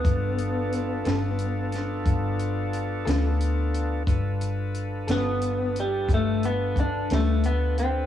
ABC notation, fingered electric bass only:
X:1
M:12/8
L:1/8
Q:3/8=60
K:Gmix
V:1 name="Fingered electric bass" clef=bass
G,,,3 G,,,3 G,,,3 D,,3 | G,,,3 G,,,3 G,,,3 D,,3 |]